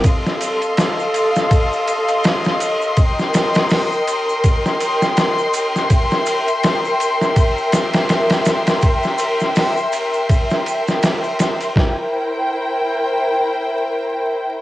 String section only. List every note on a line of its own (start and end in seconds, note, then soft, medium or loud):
0.05 2.95 A4 medium
0.05 5.86 D#5 medium
0.05 2.95 F5 medium
0.05 11.72 C6 medium
2.98 5.88 A#4 medium
2.98 11.72 G5 medium
5.91 11.72 A#4 medium
5.91 11.72 E5 medium
11.75 14.62 E4 medium
11.75 14.62 A#4 medium
11.75 14.62 C5 medium
11.75 14.62 G5 medium